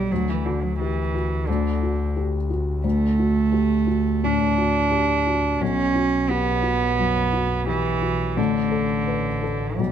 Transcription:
Already playing: double bass B1, felt piano B1 G4 A4, cello G3
0.11 double bass D2, felt piano D2, cello F#3
0.30 cello E3
0.45 cello D3, felt piano F#4
0.63 cello F#3
0.79 cello E3, felt piano G4
1.14 felt piano F#4
1.47 felt piano D2, cello D3
1.83 felt piano F#4
2.16 felt piano G4
2.50 felt piano F#4
2.84 felt piano D2, cello A3
3.19 felt piano F#4
3.52 felt piano G4
3.87 felt piano F#4
4.23 felt piano A2, cello D4
4.58 felt piano F#4
4.91 felt piano G4
5.27 felt piano F#4
5.61 felt piano B1, double bass B1, cello C#4
5.95 felt piano F#4
6.29 cello B3, felt piano G4
6.63 felt piano F#4
6.99 felt piano F#2
7.33 felt piano F#4
7.67 cello E3, felt piano G4
8.02 felt piano F#4
8.37 felt piano A1, double bass A1, cello D3
8.71 felt piano A4
9.07 felt piano B4
9.42 felt piano A4
9.78 felt piano B1, double bass B1, cello G3

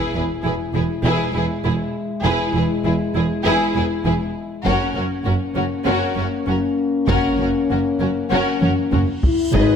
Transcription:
Already playing: french horn section G#3 E4, viola section E4, violin section G#4 B4
0.14 double bass section E1, cello section E2, viola section E4, violin section G#4 B4
0.44 double bass section E1, cello section E2, viola section E4, violin section G#4 B4
0.74 double bass section E1, cello section E2, viola section E4, violin section G#4 B4
1.04 double bass section E1, cello section E2, viola section E4, violin section G#4 B4
1.34 double bass section E1, cello section E2, viola section E4, violin section G#4 B4
1.64 double bass section E1, cello section E2, viola section E4, violin section G#4 B4
2.24 double bass section E1, cello section E2, viola section E4, violin section G#4 B4
2.53 double bass section E1, cello section E2, viola section E4, violin section G#4 B4
2.84 double bass section E1, cello section E2, viola section E4, violin section G#4 B4
3.15 double bass section E1, cello section E2, viola section E4, violin section G#4 B4
3.44 double bass section E1, cello section E2, viola section E4, violin section G#4 B4
3.75 double bass section E1, cello section E2, viola section E4, violin section G#4 B4
4.05 double bass section E1, cello section E2, viola section E4, violin section G#4 B4
4.65 double bass section F#1, cello section F#2, french horn section A#3 C#4, viola section C#4, violin section F#4 A#4, taiko
4.95 double bass section F#1, cello section F#2, viola section C#4, violin section F#4 A#4
5.24 double bass section F#1, cello section F#2, viola section C#4, violin section F#4 A#4
5.55 double bass section F#1, cello section F#2, viola section C#4, violin section F#4 A#4
5.85 double bass section F#1, cello section F#2, viola section C#4, violin section F#4 A#4
6.16 double bass section F#1, cello section F#2, viola section C#4, violin section F#4 A#4
6.46 double bass section F#1, cello section F#2, viola section C#4, violin section F#4 A#4
7.08 double bass section F#1, cello section F#2, viola section C#4, violin section F#4 A#4, taiko, reverse cymbal
7.39 double bass section F#1, cello section F#2, viola section C#4, violin section F#4 A#4
7.70 double bass section F#1, cello section F#2, viola section C#4, violin section F#4 A#4
8.00 double bass section F#1, cello section F#2, viola section C#4, violin section F#4 A#4
8.30 double bass section F#1, cello section F#2, viola section C#4, violin section F#4 A#4
8.60 double bass section F#1, cello section F#2, viola section C#4, violin section F#4 A#4, taiko high
8.92 double bass section F#1, cello section F#2, viola section C#4, violin section F#4 A#4, taiko low-mid
9.23 french horn section E4, taiko low
9.53 double bass section G#1, tuba G#1, timpani G#2, cello section G#2, french horn section D#4, viola section G#4, violin section B4 D#5, taiko, sub drop

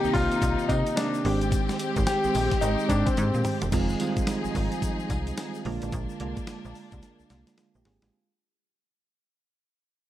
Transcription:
Already playing: string section C3 A#3 D#4, synth keys D#3 A#3 C4 G4, grand piano G4
0.04 fm bass C2, synth keys D#3 A#3 C4 G4, shaker
0.13 fm bass C2, grand piano F4, kick, open hi-hat, tambourine
0.31 closed hi-hat, shaker
0.42 fm bass C2, kick, closed hi-hat, tambourine, shaker
0.59 shaker
0.68 fm bass C3, grand piano D#4, kick, closed hi-hat, tambourine
0.87 closed hi-hat, shaker
0.96 grand piano D4, snare, closed hi-hat, tambourine, shaker
1.14 shaker
1.25 fm bass G#1, synth keys D#3 G#3 C4 G4, string section G#3 C4 G4, open hi-hat
1.41 closed hi-hat, shaker
1.52 kick, closed hi-hat, tambourine, shaker
1.69 snare, shaker
1.79 closed hi-hat, tambourine, shaker
1.96 fm bass G#1, synth keys D#3 G#3 C4 G4, kick, closed hi-hat, shaker
2.07 grand piano G4, snare, closed hi-hat, tambourine, shaker
2.24 fm bass A#1, synth keys D#3 G#3 C4 G4, shaker
2.34 fm bass A#1, open hi-hat, tambourine, shaker
2.51 kick, snare, closed hi-hat, shaker
2.61 fm bass G#1, grand piano D#4, closed hi-hat, tambourine, shaker
2.79 shaker
2.89 fm bass G#2, grand piano D4, kick, closed hi-hat, tambourine, shaker
3.06 grand piano C4, kick, closed hi-hat, shaker
3.17 fm bass G#2, closed hi-hat, high tom, shaker
3.34 fm bass A#2, shaker
3.44 mid tom, open hi-hat, shaker
3.62 fm bass E1, closed hi-hat, floor tom, shaker
3.72 fm bass F1, synth keys D#3 G#3 C4 F4, string section F3 D#4 G#4, kick, closed hi-hat, crash, tambourine, shaker
3.89 shaker
4.00 synth keys D#3 G3 C4 F4, closed hi-hat, tambourine
4.07 synth keys G#3
4.17 fm bass G#1, kick, closed hi-hat, shaker
4.27 snare, closed hi-hat, tambourine, shaker
4.45 fm bass G#1, shaker
4.55 fm bass G#1, kick, open hi-hat, tambourine, shaker
4.72 closed hi-hat, shaker
4.82 kick, closed hi-hat, tambourine, shaker
5.00 shaker
5.10 fm bass C2, kick, closed hi-hat, tambourine, shaker
5.27 closed hi-hat, shaker
5.37 snare, closed hi-hat, tambourine, shaker
5.54 shaker
5.65 fm bass A#1, synth keys D3 G#3 A#3 F4, string section G#3 A#3 D4, open hi-hat
5.82 fm bass A1, closed hi-hat, shaker
5.92 fm bass A#1, kick, closed hi-hat, shaker
6.09 shaker
6.20 fm bass C2, synth keys D3 G#3 A#3 F4, closed hi-hat
6.37 kick, closed hi-hat, shaker
6.47 snare, closed hi-hat, shaker
6.65 fm bass A#1, shaker
6.75 open hi-hat, shaker
6.92 fm bass C2, kick, closed hi-hat, shaker
7.02 snare, closed hi-hat, shaker
7.19 fm bass C2, shaker
7.30 fm bass C2, snare, closed hi-hat, shaker
7.47 snare, closed hi-hat, shaker
7.58 synth keys G#3 F4, snare, closed hi-hat, shaker
7.75 fm bass A#1, synth keys A#3 G4, shaker
7.85 fm bass G#1, synth keys C4 G#4, snare, open hi-hat
8.02 fm bass A1, synth keys G#3 F4, snare, closed hi-hat, shaker

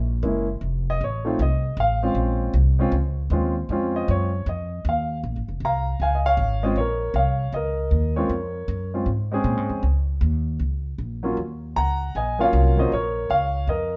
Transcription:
Already playing: upright bass A#1
0.23 upright bass F#1, grand piano G#3 A#3 C#4 E4
0.61 upright bass F1
0.90 grand piano D#5
1.01 upright bass A1, grand piano C#5
1.25 grand piano A3 C4 D#4 F4
1.39 upright bass C2, grand piano D#5
1.77 upright bass A1, grand piano F5
2.03 grand piano G#3 C4 C#4 F4
2.15 upright bass A#1
2.54 upright bass C2
2.79 grand piano G#3 C4 C#4 F4
2.92 upright bass C#2
3.30 upright bass D#2, grand piano G#3 C4 C#4 F4
3.69 upright bass F2, grand piano G#3 C4 C#4 F4
3.96 grand piano D#5
4.08 upright bass F#2, grand piano C#5
4.46 upright bass F2, grand piano D#5
4.85 upright bass D#2
4.89 grand piano F5
5.23 upright bass A#1
5.36 upright bass G#1
5.48 upright bass F1
5.60 upright bass C2
5.65 grand piano F5 A#5
6.00 upright bass C#2, grand piano F5 G#5
6.15 grand piano D#5
6.26 grand piano C#5 F5
6.37 upright bass G#1
6.63 grand piano G#3 C4 C#4 F4 C5 D#5
6.76 upright bass A#1, grand piano C#5
6.80 grand piano A#4
7.14 upright bass C2, grand piano C#5 F5
7.52 upright bass C#2, grand piano A#4 D#5
7.91 upright bass D#2
8.16 grand piano G#3 C4 C#4 F4 A#4 C#5
8.29 upright bass F2
8.68 upright bass F#2
8.94 grand piano G#3 C4 C#4 F4
9.06 upright bass G#2
9.32 grand piano G#3 C4 C#4 G#4
9.44 upright bass A#2
9.57 upright bass G#2
9.69 upright bass F2
9.83 upright bass C#2
10.21 upright bass D#2
10.59 upright bass C#2
10.98 upright bass A#1
11.23 grand piano F#3 A#3 C#4 F4
11.37 upright bass D#2
11.76 upright bass C#2, grand piano F#5 A#5
12.15 upright bass A#1, grand piano D#5 G#5
12.39 grand piano F#3 A#3 C#4 F4 C#5 F5
12.53 upright bass C2
12.77 grand piano F#3 A#3 C#4 F4 C5 D#5
12.92 upright bass A#1, grand piano A#4 C#5
13.30 upright bass C#2, grand piano C#5 F5
13.67 upright bass F2, grand piano A#4 D#5

